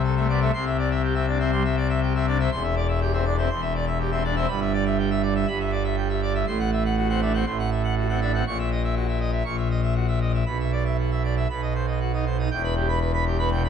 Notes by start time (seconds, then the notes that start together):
Already playing: C2 C3
0.04 A4
0.17 A3 E5
0.29 B3 D5
0.41 A3 E5
0.54 C2 C3 C6
0.66 E5
0.79 D5
0.91 E5
1.03 G4
1.15 C4 E5
1.27 D4 D5
1.40 C4 E5
1.52 G3 C6
1.65 E5
1.77 D5
1.89 E5
2.02 G4
2.15 C4 E5
2.27 D4 D5
2.39 C4 E5
2.51 E1 E2 C6
2.63 E5
2.76 D5
2.88 E5
3.01 G4
3.13 C4 E5
3.25 D4 D5
3.38 C4 E5
3.50 E1 E2 C6
3.62 E5
3.74 D5
3.87 E5
3.99 G4
4.11 C4 E5
4.24 D4 D5
4.36 C4 E5
4.48 G1 G2 B5
4.61 E5
4.73 D5
4.86 E5
4.98 G4
5.10 E5
5.23 D5
5.35 E5
5.47 G1 G2 B5
5.60 E5
5.72 D5
5.84 E5
5.97 G4
6.09 E5
6.22 D5
6.35 E5
6.47 A1 A2 C6
6.59 F#5
6.72 E5
6.85 F#5
6.97 F#4
7.09 C4 F#5
7.21 D4 E5
7.34 C4 F#5
7.46 A1 A2 C6
7.59 F#5
7.71 E5
7.84 F#5
7.97 F#4
8.09 C4 F#5
8.21 D4 E5
8.34 C4 F#5
8.47 A#1 A#2 C#6
8.59 E5
8.71 D#5
8.84 E5
8.96 F#4
9.08 E5
9.20 D#5
9.32 E5
9.45 A#1 A#2 C#6
9.57 E5
9.70 D#5
9.83 E5
9.95 F#4
10.08 E5
10.21 D#5
10.34 E5
10.46 B1 B2 B5
10.60 E5
10.72 D5
10.85 E5
10.98 F#4
11.11 E5
11.24 D5
11.37 E5
11.50 B1 B2 B5
11.62 D#5
11.75 C5
11.87 D#5
12.00 F#4
12.13 D#4 D#5
12.26 C5
12.39 D#4 D#5
12.51 E1 E2 G5
12.64 B4 B5
12.76 G4
12.88 B4 B5
13.01 B4
13.14 B4 B5
13.26 G4
13.39 B3 B4 B5
13.52 B2 G5
13.64 B4 B5